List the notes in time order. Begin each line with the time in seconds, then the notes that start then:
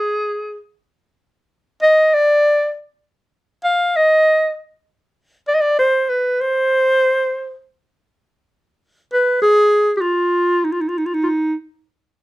Already playing: G#4
1.82 D#5
2.14 D5
3.64 F5
3.96 D#5
5.48 D5
5.55 D#5
5.61 D5
5.79 C5
6.09 B4
6.40 C5
9.13 B4
9.42 G#4
9.97 F4 G4
10.64 D#4
10.72 F4
10.81 D#4
10.88 F4
10.97 D#4
11.05 F4
11.14 D#4
11.23 D#4 F4